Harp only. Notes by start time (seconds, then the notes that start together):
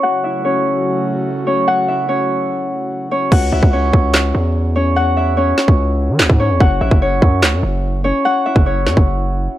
Already playing: C#4 E4 C#5 E5
0.03 F#4 F#5
0.24 E4 E5
0.45 C#4 C#5
1.47 C#4 C#5
1.68 F#4 F#5
1.88 E4 E5
2.09 C#4 C#5
3.11 C#4 C#5
3.32 F#4 F#5
3.53 E4 E5
3.73 C#4 C#5
4.76 C#4 C#5
4.96 F#4 F#5
5.17 E4 E5
5.37 C#4 C#5
6.40 C#4 C#5
6.60 F#4 F#5
6.81 E4 E5
7.02 C#4 C#5
8.04 C#4 C#5
8.25 F#4 F#5
8.46 E4 E5
8.66 C#4 C#5